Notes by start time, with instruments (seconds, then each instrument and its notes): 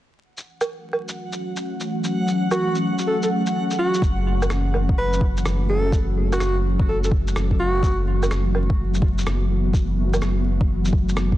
0.20 ambient pad E3 F#3 A3 C#4 F#4, synth texture F#5
0.37 shaker
0.61 low woodblock, shaker
0.93 low woodblock
1.09 shaker
1.33 shaker
1.57 shaker
1.80 shaker
2.04 shaker
2.11 ambient pad G#4
2.28 shaker
2.51 alto saxophone F#4, low woodblock, shaker
2.75 shaker
2.99 shaker
3.07 alto saxophone A4
3.23 alto saxophone A4, shaker
3.46 shaker
3.71 shaker
3.79 alto saxophone F#4
3.94 shaker
4.02 sub bass F#1, ambient pad E3 F#3 A3 C#4 F#4, kick, shaker
4.42 low woodblock, shaker
4.50 cross-stick, shaker
4.74 low woodblock
4.89 kick
4.98 alto saxophone B4
5.13 shaker
5.21 kick
5.37 shaker
5.45 cross-stick, shaker
5.69 alto saxophone A4
5.92 sub bass F#1, kick, shaker
6.33 alto saxophone F#4, low woodblock, shaker
6.40 cross-stick, shaker
6.80 kick
6.89 alto saxophone A4
7.04 alto saxophone A4, shaker
7.11 kick
7.28 shaker
7.36 cross-stick, shaker
7.51 kick
7.60 alto saxophone F#4
7.83 sub bass F#1, ambient pad B3, kick, shaker
8.23 low woodblock, shaker
8.31 cross-stick, shaker
8.55 low woodblock
8.70 kick
8.94 shaker
9.02 kick
9.18 shaker
9.27 cross-stick, shaker
9.73 sub bass F#1, kick, shaker
10.14 low woodblock, shaker
10.22 cross-stick, shaker
10.61 kick
10.85 shaker
10.93 kick
11.09 shaker
11.17 cross-stick, shaker
11.32 kick